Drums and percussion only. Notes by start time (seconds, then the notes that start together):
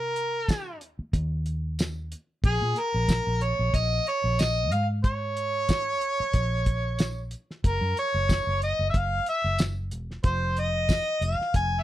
0.16 closed hi-hat
0.48 kick, snare, closed hi-hat, tambourine
0.81 closed hi-hat
1.13 kick, closed hi-hat
1.46 closed hi-hat
1.79 snare, closed hi-hat, tambourine
2.12 closed hi-hat
2.44 kick, closed hi-hat
2.76 closed hi-hat
3.09 kick, snare, closed hi-hat, tambourine
3.41 closed hi-hat
3.74 kick, closed hi-hat
4.07 closed hi-hat
4.39 snare, closed hi-hat, tambourine
4.71 closed hi-hat
5.04 kick, closed hi-hat
5.37 closed hi-hat
5.69 kick, snare, closed hi-hat, tambourine
6.01 closed hi-hat
6.33 kick, closed hi-hat
6.66 kick, closed hi-hat
6.99 snare, closed hi-hat, tambourine
7.31 closed hi-hat
7.51 snare
7.64 kick, closed hi-hat
7.97 closed hi-hat
8.29 kick, snare, closed hi-hat, tambourine
8.62 closed hi-hat
8.94 kick, closed hi-hat
9.26 closed hi-hat
9.59 snare, closed hi-hat, tambourine
9.91 closed hi-hat
10.11 snare
10.24 kick, closed hi-hat
10.57 closed hi-hat
10.89 kick, snare, closed hi-hat, tambourine
11.22 closed hi-hat
11.41 snare
11.54 kick, closed hi-hat